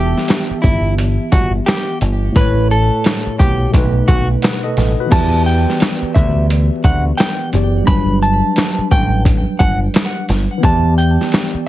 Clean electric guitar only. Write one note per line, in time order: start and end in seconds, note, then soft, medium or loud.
0.00 0.59 G4 medium
0.62 0.94 E4 medium
1.32 1.52 F#4 medium
1.66 1.98 G4 medium
2.36 2.67 B4 loud
2.71 3.36 A4 medium
3.39 3.70 G4 medium
4.08 4.27 F#4 medium
5.12 5.43 A5 medium
5.46 6.11 G5 medium
6.14 6.46 E5 medium
6.85 7.04 F#5 medium
7.17 7.49 G5 medium
7.87 8.18 B5 loud
8.22 8.87 A5 medium
8.92 9.22 G5 medium
9.59 9.79 F#5 loud
10.65 10.95 A5 loud
10.98 11.63 G5 medium